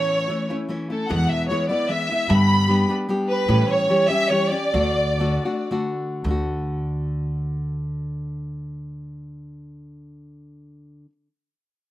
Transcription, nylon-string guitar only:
Already playing: A2 E3 A3 C#4 E4
0.29 E3 A3 C#4 E4
0.50 A3 C#4 E4
0.68 E3 A3 C#4 E4
0.90 A3 C#4 E4
1.09 E2 B2 E3 G#3 B3 E4
1.50 E3 G#3 B3 E4
1.69 E3 G#3 B3 E4
1.89 E3 G#3 B3 E4
2.10 E3 G#3 B3 E4
2.29 G2 D3 G3 B3 D4 G4
2.68 G3 B3 D4 G4
2.89 G3 B3 D4 G4
3.09 G3 B3 D4 G4
3.48 A2 E3 G3 C#4 G4
3.89 E3 G3 C#4 G4
4.09 G3 C#4 G4
4.30 E3 G3 C#4 G4
4.52 G3 C#4 G4
4.73 D3 A3 D4 F#4
5.19 D3 A3 D4 F#4
5.45 A3 D4 F#4
5.71 D3 A3 D4 F#4
6.24 D3 A3
6.28 D4 F#4

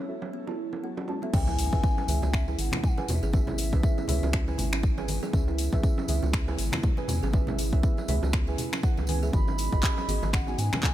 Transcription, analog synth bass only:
1.33 C#2
1.73 C#2
2.08 C#2
2.23 C#2
2.58 G#1
3.08 E2
3.22 G#1
3.73 C#2
4.09 C#2
4.23 C#2
4.59 G#1
5.33 C#2
5.73 C#2
6.09 C#2
6.23 C#2
6.59 G#1
7.09 E2
7.23 G#1
7.73 C#2
8.08 C#2
8.23 C#2
8.98 C#2
9.33 G#1
9.73 G#1
10.08 G#1
10.23 G#1
10.58 G#2

